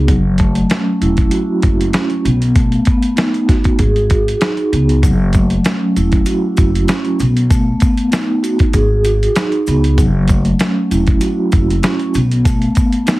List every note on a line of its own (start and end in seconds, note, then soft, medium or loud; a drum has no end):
0.00 0.10 C#2 medium
0.00 0.10 B3 medium
0.00 0.10 F#4 medium
0.08 0.60 F#1 loud
0.08 1.63 F#3 loud
0.08 kick loud
0.08 closed hi-hat medium
0.38 1.94 A3 medium
0.38 kick loud
0.38 closed hi-hat medium
0.55 closed hi-hat medium
0.70 1.92 C#4 medium
0.70 snare loud
0.70 closed hi-hat medium
1.01 1.27 E1 medium
1.01 1.61 E4 loud
1.01 closed hi-hat medium
1.17 kick medium
1.17 closed hi-hat soft
1.31 2.24 F#4 medium
1.31 closed hi-hat loud
1.62 1.89 F#1 loud
1.62 2.24 E4 medium
1.62 kick loud
1.62 closed hi-hat medium
1.81 closed hi-hat medium
1.93 2.24 C#4 medium
1.93 snare loud
1.93 closed hi-hat medium
2.10 closed hi-hat soft
2.25 2.76 B1 loud
2.25 2.85 B3 medium
2.25 closed hi-hat medium
2.42 closed hi-hat medium
2.55 3.79 A3 medium
2.55 kick loud
2.55 closed hi-hat medium
2.72 closed hi-hat soft
2.85 3.79 B3 medium
2.85 kick medium
2.85 closed hi-hat medium
3.03 closed hi-hat medium
3.16 3.79 D#4 medium
3.16 snare loud
3.16 closed hi-hat medium
3.34 closed hi-hat soft
3.48 3.79 F#4 medium
3.48 kick loud
3.48 snare soft
3.48 closed hi-hat medium
3.64 kick medium
3.64 closed hi-hat soft
3.79 4.31 G#1 loud
3.79 5.03 G#4 medium
3.79 kick medium
3.79 closed hi-hat loud
3.96 closed hi-hat soft
4.10 5.03 F#4 medium
4.10 kick loud
4.10 closed hi-hat medium
4.28 closed hi-hat medium
4.41 5.03 D#4 medium
4.41 snare loud
4.41 closed hi-hat medium
4.57 closed hi-hat soft
4.72 5.05 C#2 medium
4.72 5.03 B3 medium
4.72 closed hi-hat medium
4.89 closed hi-hat medium
5.03 5.55 F#1 loud
5.03 6.57 F#3 loud
5.03 kick loud
5.03 closed hi-hat medium
5.03 maracas medium
5.33 6.89 A3 medium
5.33 kick loud
5.33 closed hi-hat medium
5.33 maracas medium
5.50 closed hi-hat medium
5.64 6.87 C#4 medium
5.64 snare loud
5.64 closed hi-hat medium
5.64 maracas medium
5.96 6.22 E1 medium
5.96 6.56 E4 medium
5.96 closed hi-hat medium
5.96 maracas medium
6.12 kick medium
6.12 closed hi-hat soft
6.26 7.19 F#4 medium
6.26 closed hi-hat loud
6.26 maracas medium
6.57 6.84 F#1 loud
6.57 7.19 E4 medium
6.57 kick loud
6.57 closed hi-hat medium
6.57 maracas medium
6.75 closed hi-hat medium
6.88 7.19 C#4 medium
6.88 snare loud
6.88 closed hi-hat medium
6.88 maracas medium
7.05 closed hi-hat soft
7.19 7.71 B1 loud
7.19 7.80 B3 medium
7.19 closed hi-hat medium
7.19 maracas soft
7.37 closed hi-hat medium
7.50 8.74 A3 medium
7.50 kick loud
7.50 closed hi-hat medium
7.50 maracas medium
7.80 8.74 B3 medium
7.80 kick loud
7.80 closed hi-hat medium
7.80 maracas medium
7.97 closed hi-hat medium
8.11 8.74 D#4 medium
8.11 snare loud
8.11 closed hi-hat medium
8.11 maracas medium
8.43 8.74 F#4 loud
8.43 closed hi-hat medium
8.43 maracas medium
8.59 kick medium
8.59 closed hi-hat soft
8.73 9.25 G#1 loud
8.73 9.98 G#4 medium
8.73 kick medium
8.73 closed hi-hat loud
8.73 maracas medium
9.04 9.98 F#4 medium
9.04 closed hi-hat medium
9.04 maracas medium
9.23 closed hi-hat medium
9.36 9.98 D#4 medium
9.36 snare loud
9.36 closed hi-hat medium
9.36 maracas medium
9.52 closed hi-hat soft
9.67 10.00 C#2 medium
9.67 9.98 B3 medium
9.67 closed hi-hat medium
9.67 maracas soft
9.84 closed hi-hat medium
9.98 10.49 F#1 loud
9.98 11.52 F#3 loud
9.98 kick loud
9.98 closed hi-hat medium
9.98 maracas medium
10.28 11.83 A3 medium
10.28 kick loud
10.28 closed hi-hat medium
10.28 maracas medium
10.45 closed hi-hat medium
10.59 11.82 C#4 medium
10.59 snare loud
10.59 closed hi-hat medium
10.59 maracas medium
10.91 11.17 E1 medium
10.91 11.51 E4 medium
10.91 closed hi-hat medium
10.91 maracas medium
11.07 kick loud
11.07 closed hi-hat soft
11.21 12.14 F#4 medium
11.21 closed hi-hat loud
11.21 maracas medium
11.52 11.79 F#1 loud
11.52 12.14 E4 medium
11.52 kick loud
11.52 closed hi-hat medium
11.52 maracas medium
11.70 closed hi-hat medium
11.83 12.14 C#4 medium
11.83 snare loud
11.83 closed hi-hat medium
11.83 maracas medium
11.99 closed hi-hat soft
12.14 12.66 B1 loud
12.14 12.75 B3 medium
12.14 closed hi-hat medium
12.14 maracas soft
12.31 closed hi-hat medium
12.45 13.20 A3 medium
12.45 kick loud
12.45 closed hi-hat medium
12.45 maracas medium
12.62 closed hi-hat soft
12.75 13.20 B3 medium
12.75 kick loud
12.75 closed hi-hat medium
12.75 maracas medium
12.92 closed hi-hat medium
13.06 13.20 D#4 medium
13.06 snare loud
13.06 closed hi-hat medium
13.06 maracas medium